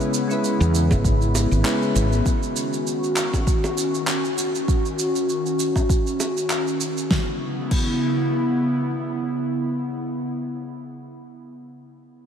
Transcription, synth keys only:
Already playing: G#3 C#4 E4 B4
0.28 G#3 C#4 E4
0.33 B4
1.64 G#3 C#4 E4 B4

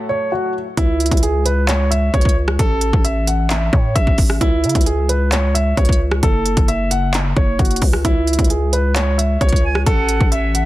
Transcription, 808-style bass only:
0.77 C#2
1.11 C#2
2.14 C#2
2.59 A1
2.93 A1
3.73 A2
3.96 A1
4.41 C#2
4.64 C#3
4.75 C#2
5.77 C#2
6.23 F#1
6.57 F#1
7.37 F#1
7.59 F#1
7.82 C#2
8.05 C#2
8.39 C#2
9.41 C#2
9.86 A1
10.21 A1

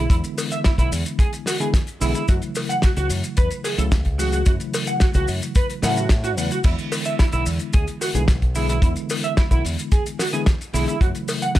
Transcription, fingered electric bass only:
0.10 E2
0.78 B1
0.92 E2
2.01 B1
2.29 F#2
2.97 C#2
3.10 F#2
3.38 E2
3.78 C#2
4.47 F#2
5.15 C#2
5.28 F#2
5.83 A2
6.37 E2
6.64 E2
7.33 B1
7.46 E2
7.74 D2
8.15 B1
8.82 E2
9.51 B1
9.65 E2
10.74 B1
11.01 F#2

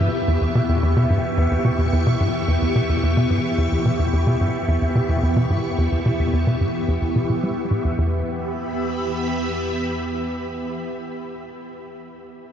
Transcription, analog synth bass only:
0.00 G2
0.28 E2
0.41 E2
0.55 B2
0.69 E2
0.83 E2
0.96 B2
1.10 G2
1.38 E2
1.51 E2
1.65 B2
1.79 E2
1.93 E2
2.07 B2
2.20 G2
2.48 E2
2.62 E2
2.76 B2
2.89 E2
3.03 E2
3.17 B2
3.30 G2
3.58 E2
3.72 E2
3.85 B2
3.99 E2
4.13 E2
4.27 B2
4.41 G2
4.68 E2
4.82 E2
4.95 B2
5.09 E2
5.23 E2
5.36 B2
5.50 G2
5.78 E2
5.92 E2
6.06 B2
6.19 E2
6.33 E2
6.47 B2
6.61 G2
6.88 E2
7.02 E2
7.16 B2
7.30 B2
7.44 G3
7.71 A2
7.85 E2
7.98 E2

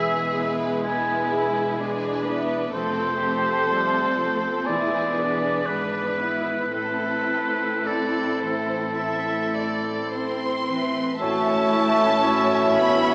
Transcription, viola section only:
Already playing: G#3 B3
0.86 B3
1.34 E4
1.81 G#3 D4
2.27 B3
2.75 A3 C4
3.23 C4
3.72 G3 C4
4.19 A3
4.67 B3 E4
5.16 D4
5.67 D4
6.20 E4
6.74 C4 E4
11.20 C#4 E4

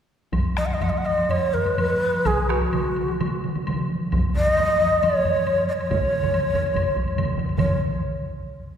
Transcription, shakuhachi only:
0.57 D#5
0.65 F#5
0.73 D#5
0.82 F#5
0.89 D#5
0.97 F#5
1.05 D#5
1.30 C#5
1.53 B4
2.26 G#4
2.49 F#4
4.36 D#5
5.02 C#5
5.68 D#5
5.72 C#5
7.58 C#5

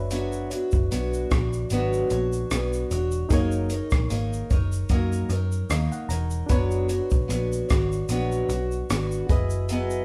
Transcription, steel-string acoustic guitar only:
Already playing: D4 F#4 C#5
0.11 F#3 B3 D4 F#4 C#5
0.50 D4 F#4 C#5
0.91 B3 D4 F#4 C#5
1.30 D4 F#4 C#5
1.71 F#3 B3 D4 F#4 C#5
2.12 D4 F#4 C#5
2.51 B3 D4 F#4 C#5
2.91 D4 F#4 C#5
3.31 F#3 A#3 D#4 A#4 C#5
3.71 D#4 A#4 C#5
4.10 A#3 D#4 A#4 C#5
4.50 D#4 A#4 C#5
4.91 F#3 A#3 D#4 A#4 C#5
5.31 D#4 A#4 C#5
5.70 A#3 D#4 A#4 C#5
6.10 D#4 A#4 C#5
6.50 F#3 B3 D4 F#4 C#5
6.88 D4 F#4 C#5
7.28 B3 D4 F#4 C#5
7.69 D4 F#4 C#5
8.10 F#3 B3 D4 F#4 C#5
8.49 D4 F#4 C#5
8.90 B3 D4 F#4 C#5
9.30 E4 G#4 D#5
9.70 F#3 B3 E4 G#4 D#5

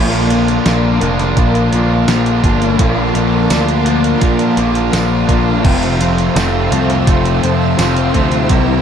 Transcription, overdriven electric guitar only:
Already playing: A#2 D3 A#3 D4
0.00 F4
0.30 A#3 D4 F4
0.65 D3 A#3 D4 F4
1.00 A#3 D4 F4
1.36 A#2 D3 A#3 D4 F4
1.71 A#3 D4 F4
2.07 D3 A#3 D4 F4
2.42 A#3 D4 F4
2.78 A#2 D3 A#3 D4 F4
3.14 A#3 D4 F4
3.50 D3 A#3 D4 F4
3.85 A#3 D4 F4
4.20 A#2 D3 A#3 D4 F4
4.56 A#3 D4 F4
4.92 D3 A#3 D4 F4
5.28 A#3 D4 F4
5.64 F2 C3 F3 A3 C4 F4
5.99 F3 A3 C4 F4
6.35 F3 A3 C4 F4
6.71 F3 A3 C4 F4
7.07 F2 C3 F3 A3 C4 F4
7.43 F3 A3 C4 F4
7.79 F3 A3 C4 F4
8.14 A3 C4 F4
8.18 F3
8.49 C3 G3 A#3 E4 G4

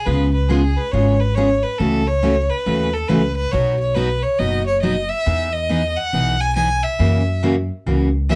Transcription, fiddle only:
0.05 B4
0.34 B4
0.49 G#4
0.76 B4
0.92 C#5
1.20 B4
1.35 C#5
1.63 B4
1.78 A4
2.07 C#5
2.50 B4
2.93 A4
3.08 B4
3.36 B4
3.51 C#5
3.80 C#5
3.95 B4
4.23 C#5
4.38 D#5
4.66 C#5
4.82 D#5
5.09 E5
5.53 D#5
5.97 F#5
6.40 G#5
6.55 G#5
6.83 E5
8.29 E5

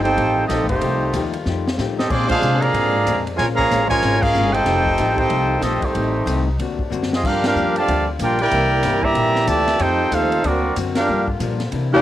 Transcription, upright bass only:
Already playing: G1
0.17 A1
0.49 A#1
0.61 A1
0.71 F1
0.82 C2
1.13 D#2
1.46 F2
1.78 A2
2.10 A#2
2.41 C3
2.73 G#2
3.06 F2
3.39 A#1
3.71 A1
4.02 G#1
4.35 G1
4.66 F1
4.98 A1
5.30 C2
5.61 A#1
5.82 muted upright bass stroke
5.95 A1
6.26 C2
6.58 D2
6.91 F#2
7.24 G2
7.55 F2
7.88 D2
8.19 A#1
8.51 C2
8.83 G1
9.15 A#1
9.47 D2
9.80 F2
10.11 D#2
10.44 D2
10.76 F#2
11.09 G2
11.40 A#2
11.72 C3

